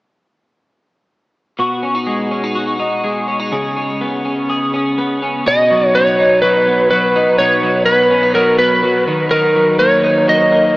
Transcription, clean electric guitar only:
1.59 3.51 B2 medium
1.59 2.54 F#4 medium
1.83 1.95 C#4 medium
1.95 2.31 D#4 soft
2.07 3.03 G#3 medium
2.31 2.44 C#4 medium
2.44 2.78 D#4 soft
2.55 3.52 F#4 medium
2.80 3.27 D#4 medium
3.04 3.58 G#3 medium
3.28 3.40 C#4 soft
3.40 3.57 D#4 soft
3.52 5.46 C#3 medium
3.52 4.48 G#4 medium
3.76 4.24 C#4 medium
4.01 4.98 B3 medium
4.25 4.73 C#4 medium
4.50 5.51 G#4 medium
4.74 5.21 C#4 medium
4.98 5.94 B3 medium
5.22 5.47 C#4 medium
5.46 7.39 B2 medium
5.46 6.18 D#4 medium
5.71 6.43 F#3 medium
5.95 6.66 B3 medium
6.19 7.16 D#4 medium
6.43 6.91 F#3 medium
6.68 7.86 B3 medium
6.91 7.63 F#3 medium
7.16 7.40 D#4 medium
7.40 9.07 B2 medium
7.40 8.10 D#4 medium
7.63 8.35 F#3 medium
7.87 8.58 B3 medium
8.11 8.23 C#4 medium
8.23 9.12 D#4 medium
8.35 8.83 F#3 medium
8.59 9.13 B3 medium
8.83 9.55 F#3 medium
9.08 9.31 D#3 medium
9.31 10.77 D#3 medium
9.31 10.03 D#4 medium
9.56 10.26 F#3 medium
9.80 10.50 A#3 medium
10.04 10.77 D#4 medium
10.28 10.75 F#3 medium
10.51 10.77 A#3 medium

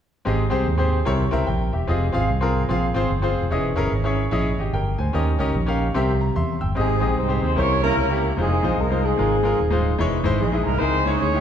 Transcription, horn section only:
6.78 7.15 G#3 medium
6.78 7.19 C4 medium
6.78 7.53 D#4 medium
6.78 7.15 G#4 medium
7.19 7.41 C4 medium
7.19 7.41 C5 medium
7.43 7.56 C4 medium
7.43 7.56 C5 medium
7.58 7.83 C#4 medium
7.58 7.82 E4 medium
7.58 7.82 A#4 medium
7.58 7.83 C#5 medium
7.83 8.20 A#3 medium
7.83 8.35 C#4 medium
7.83 8.34 E4 medium
7.83 8.20 A#4 medium
8.40 8.76 G#3 medium
8.40 9.04 C4 medium
8.40 9.04 D#4 medium
8.40 8.76 G#4 medium
8.80 9.04 A#3 medium
8.80 9.04 A#4 medium
9.05 9.86 G#3 medium
9.05 9.82 C4 medium
9.05 9.81 D#4 medium
9.05 9.86 G#4 medium
10.40 10.64 G#3 medium
10.40 10.64 G#4 medium
10.64 10.80 A#3 medium
10.64 10.80 A#4 medium
10.79 11.05 C4 medium
10.79 11.40 D#4 medium
10.79 11.19 G#4 medium
10.79 11.05 C5 medium
11.05 11.17 C#4 medium
11.05 11.17 C#5 loud
11.18 11.40 C#4 medium
11.18 11.40 G#4 medium
11.18 11.40 C#5 loud

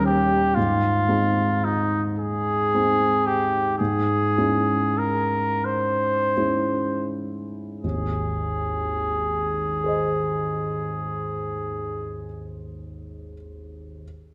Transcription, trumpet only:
0.06 0.56 G4 medium
0.55 1.66 F4 medium
1.64 2.03 D#4 soft
2.19 3.28 G#4 medium
3.26 3.78 G4 medium
3.79 5.00 G#4 medium
4.98 5.67 A#4 soft
5.65 7.11 C5 soft
7.81 12.23 G#4 soft

